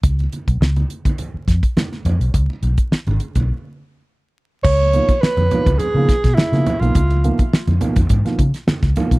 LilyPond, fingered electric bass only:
\new Staff \with { instrumentName = "Fingered electric bass" } { \clef bass \time 4/4 \key des \mixolydian \tempo 4 = 104 des,8 r16 ces,16 des,8 r4 f,16 r8. f,16 ces,16 | des,16 r16 ces,16 r8 aes,,16 r16 ces,16 r2 | des,8. r8 f,16 r16 des,16 r16 des16 r16 ces16 r16 des16 r16 ces,16 | des,8. r8 f,16 r16 f,16 aes,16 r16 des16 r8 des,16 r16 ces,16 | }